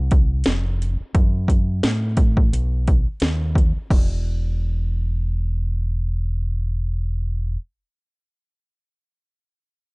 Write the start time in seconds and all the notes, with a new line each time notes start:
Already playing: C2
0.11 kick, closed hi-hat
0.44 F1, snare, closed hi-hat
0.82 closed hi-hat
1.00 muted fingered electric bass stroke
1.15 F#2, kick, closed hi-hat
1.48 kick, closed hi-hat
1.83 A2, snare, closed hi-hat
2.17 kick, closed hi-hat
2.37 kick
2.53 B1, closed hi-hat
2.88 kick, closed hi-hat
3.07 muted fingered electric bass stroke
3.20 D#2, snare, closed hi-hat
3.55 kick, closed hi-hat
3.76 muted fingered electric bass stroke
3.90 E1, kick, crash